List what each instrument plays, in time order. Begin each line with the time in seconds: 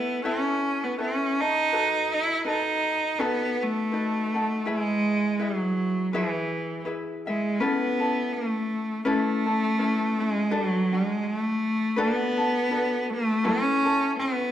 Already playing: cello B3, ukulele E4 A4 E5
0.24 cello C#4, ukulele E4 A4 B4 E5
0.84 cello B3
0.98 cello C#4, ukulele E4 A4 B4 E5
1.40 cello D#4, ukulele A4
1.72 ukulele F#4 A4 B4
2.14 cello E4
2.44 ukulele D#4 F#4 A4 B4, cello D#4
3.19 cello B3, ukulele D#4 F#4 A4 B4
3.63 cello A3
3.91 ukulele D#4 F#4 A4 B4
4.34 ukulele D#4 F#4 A4
4.65 cello G#3, ukulele E4 G#4 B4 E5
5.39 cello F#3, ukulele E4 G#4 B4 E5
6.13 cello E3, ukulele E4 G#4 B4 E5
6.85 ukulele E4 G#4 B4 E5
7.27 cello G#3, ukulele E4 G#4 E5
7.60 cello B3, ukulele C#4 E4 A4 B4
8.00 ukulele C#4 E4 A4
8.33 cello A3
9.05 cello A3, ukulele C#4 E4 A4 B4
9.46 ukulele C#4 E4 A4
9.78 ukulele C#4 E4 A4 B4
10.19 cello G#3, ukulele C#4 E4
10.50 cello F#3, ukulele D4 F#4 A4 B4
10.92 cello G#3, ukulele D4 F#4
11.26 cello A3
11.96 cello B3, ukulele D4 F#4 A4 B4
12.38 ukulele D4 F#4 A4
12.70 ukulele D4 F#4 A4 B4
13.13 cello A3
13.44 cello C#4, ukulele E4 A4 B4
13.85 ukulele E4 A4
14.19 cello B3